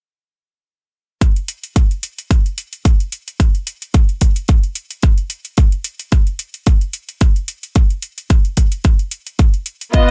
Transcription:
1.21 kick, closed hi-hat
1.36 closed hi-hat
1.48 closed hi-hat
1.64 closed hi-hat
1.76 kick, closed hi-hat
1.91 closed hi-hat
2.03 closed hi-hat
2.18 closed hi-hat
2.31 kick, closed hi-hat
2.46 closed hi-hat
2.58 closed hi-hat
2.73 closed hi-hat
2.85 kick, closed hi-hat
3.00 closed hi-hat
3.12 closed hi-hat
3.28 closed hi-hat
3.40 kick, closed hi-hat
3.55 closed hi-hat
3.67 closed hi-hat
3.82 closed hi-hat
3.94 kick, closed hi-hat
4.09 closed hi-hat
4.21 kick, closed hi-hat
4.36 closed hi-hat
4.48 kick, closed hi-hat
4.63 closed hi-hat
4.75 closed hi-hat
4.90 closed hi-hat
5.02 kick, closed hi-hat
5.18 closed hi-hat
5.30 closed hi-hat
5.45 closed hi-hat
5.57 kick, closed hi-hat
5.72 closed hi-hat
5.84 closed hi-hat
5.99 closed hi-hat
6.12 kick, closed hi-hat
6.27 closed hi-hat
6.39 closed hi-hat
6.54 closed hi-hat
6.66 kick, closed hi-hat
6.81 closed hi-hat
6.93 closed hi-hat
7.09 closed hi-hat
7.21 kick, closed hi-hat
7.36 closed hi-hat
7.48 closed hi-hat
7.63 closed hi-hat
7.75 kick, closed hi-hat
7.90 closed hi-hat
8.02 closed hi-hat
8.18 closed hi-hat
8.30 kick, closed hi-hat
8.45 closed hi-hat
8.57 kick, closed hi-hat
8.72 closed hi-hat
8.84 kick, closed hi-hat
8.99 closed hi-hat
9.11 closed hi-hat
9.26 closed hi-hat
9.39 kick, closed hi-hat
9.54 closed hi-hat
9.66 closed hi-hat
9.81 closed hi-hat
9.93 B3 F4 D#5, kick, closed hi-hat

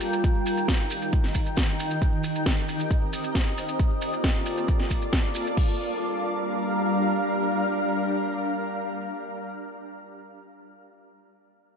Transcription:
Already playing: G3 F4 A#4 G5
0.00 open hi-hat, maracas
0.13 maracas
0.24 D#3 D#4, kick, closed hi-hat, maracas
0.35 closed hi-hat
0.46 open hi-hat, maracas
0.57 closed hi-hat, maracas
0.68 kick, snare, closed hi-hat, maracas
0.80 closed hi-hat
0.90 open hi-hat, maracas
1.02 closed hi-hat, maracas
1.13 kick, closed hi-hat, maracas
1.24 snare, open hi-hat
1.34 kick, open hi-hat, maracas
1.46 closed hi-hat, maracas
1.56 kick, snare, closed hi-hat, maracas
1.68 closed hi-hat
1.79 open hi-hat, maracas
1.91 maracas
2.02 C4 G4 A#4 D#5, kick, closed hi-hat, maracas
2.13 closed hi-hat
2.24 open hi-hat, maracas
2.35 maracas
2.46 kick, snare, closed hi-hat, maracas
2.57 closed hi-hat
2.68 open hi-hat, maracas
2.80 closed hi-hat, maracas
2.91 kick, closed hi-hat, maracas
3.02 closed hi-hat
3.13 open hi-hat, maracas
3.24 closed hi-hat, maracas
3.35 kick, snare, closed hi-hat, maracas
3.46 closed hi-hat
3.57 open hi-hat, maracas
3.68 closed hi-hat, maracas
3.79 A#3 F4 A4 D5, kick, closed hi-hat, maracas
3.91 closed hi-hat
4.02 open hi-hat, maracas
4.13 closed hi-hat, maracas
4.24 kick, snare, closed hi-hat, maracas
4.35 closed hi-hat
4.46 open hi-hat, maracas
4.57 closed hi-hat, maracas
4.68 kick, closed hi-hat, maracas
4.79 snare, open hi-hat
4.91 kick, open hi-hat, maracas
5.02 closed hi-hat, maracas
5.13 kick, snare, closed hi-hat, maracas
5.24 closed hi-hat
5.35 open hi-hat, maracas
5.47 maracas
5.57 G3 D4 A#4 F5, kick, crash

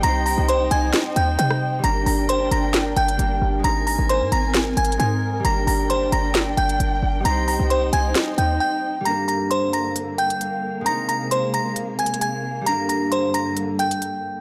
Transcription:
Already playing: A#3 D4 A#4 G5
0.00 C2 G3 C4 D#4 C5 A#5, closed hi-hat
0.04 D#4 A#6
0.08 C5
0.26 A#5 A#6, open hi-hat
0.38 C2
0.48 C5 C6, closed hi-hat
0.71 C2 G#5 G#6, closed hi-hat
0.93 snare, closed hi-hat
1.16 D#2 G5 G6, closed hi-hat
1.39 C3 G5 G6, closed hi-hat
1.51 cross-stick
1.79 G3 A#3
1.84 G1 D4 A#4 G5 A#5 A#6, closed hi-hat
1.89 A#4
2.06 G1 A#5 A#6, open hi-hat
2.29 C5 C6, closed hi-hat
2.51 G1 A#5 A#6, closed hi-hat
2.74 snare, closed hi-hat
2.96 G1 G5 G6, closed hi-hat
3.08 closed hi-hat
3.17 G1 G3 A#3 D4, closed hi-hat
3.22 A#4
3.42 G1
3.59 G#3 C4
3.64 G#1 C4 D#4 A#4 G#5 A#5 A#6, closed hi-hat
3.69 A#4
3.87 A#5 A#6, open hi-hat
3.99 G#1
4.09 C5 C6, closed hi-hat
4.21 G#2
4.32 G#1 A#5 A#6, closed hi-hat
4.54 snare, closed hi-hat
4.77 G#1 G#5 G#6, closed hi-hat
4.85 closed hi-hat
4.92 closed hi-hat
4.97 G#2 G#3 C4 D#4 G#5 G#6, closed hi-hat
5.02 A#4
5.40 G3 A#3
5.45 G1 D4 G5 A#5 A#6, closed hi-hat
5.50 A#4
5.67 G1 A#5 A#6, open hi-hat
5.90 C5 C6, closed hi-hat
6.12 G1 A#5 A#6, closed hi-hat
6.35 snare, closed hi-hat
6.57 G1 G5 G6, closed hi-hat
6.69 closed hi-hat
6.80 G1, closed hi-hat
7.03 G1
7.20 G3 C4
7.25 C2 D#4 C5 A#5 A#6, closed hi-hat
7.30 C5
7.48 A#5 A#6, open hi-hat
7.60 C2
7.70 C5 C6, closed hi-hat
7.93 C2 G#5 G#6, closed hi-hat
8.15 snare, closed hi-hat
8.38 D#2 G5 G6, closed hi-hat
8.60 G5 G6
9.01 G3 A#3
9.05 G2 D3 A#3 D4 A#5 A#6, closed hi-hat
9.11 A#4
9.28 A#5 A#6, closed hi-hat
9.51 C5 C6, closed hi-hat
9.73 A#5 A#6, closed hi-hat
9.96 closed hi-hat
10.18 G5 G6, closed hi-hat
10.30 closed hi-hat
10.41 closed hi-hat
10.81 G#3 C4
10.86 C3 G#3 D#4 A#5 A#6, closed hi-hat
10.91 A#4
11.09 A#5 A#6, closed hi-hat
11.31 C5 C6, closed hi-hat
11.54 A#5 A#6, closed hi-hat
11.76 closed hi-hat
11.99 G#5 G#6, closed hi-hat
12.06 closed hi-hat
12.14 closed hi-hat
12.21 G#5 G#6, closed hi-hat
12.61 G3 A#3
12.66 G2 D3 D4 A#5 A#6, closed hi-hat
12.71 A#4
12.89 A#5 A#6, closed hi-hat
13.12 C5 C6, closed hi-hat
13.34 A#5 A#6, closed hi-hat
13.57 closed hi-hat
13.79 G5 G6, closed hi-hat
13.91 closed hi-hat
14.02 closed hi-hat

